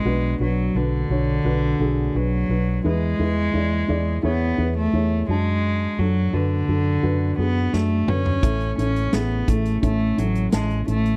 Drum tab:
HH |----------------|----------------|----------------|xxxxx-xxx-xxxxxx|
SD |----------------|----------------|------------o---|----o-------o---|
T2 |----------------|----------------|--------------o-|----------------|
FT |----------------|----------------|---------------o|----------------|
BD |----------------|----------------|----------------|o-----o-o-------|